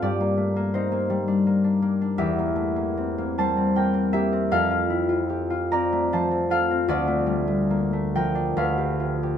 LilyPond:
<<
  \new Staff \with { instrumentName = "Harp" } { \time 3/4 \key g \minor \tempo 4 = 79 <g' d''>4 <ees' c''>2 | \key f \major <g' e''>4. <c'' a''>8 <bes' g''>8 <g' e''>8 | <a' f''>4. <d'' bes''>8 <c'' a''>8 <a' f''>8 | <f' d''>4. <bes' g''>8 <b' f''>4 | }
  \new Staff \with { instrumentName = "Harp" } { \time 3/4 \key g \minor g,16 bes16 a16 bes16 c'16 bes16 g16 d'16 bes16 d'16 bes16 d'16 | \key f \major e,16 bes16 a16 bes16 c'16 bes16 g16 c'16 bes16 c'16 bes16 c'16 | f,16 f'16 e'16 f'16 g'16 f'16 c'16 a16 f16 c'16 f'16 c'16 | d,16 a16 g16 a16 bes16 a16 f16 d'16 d,16 g'16 f'16 g'16 | }
>>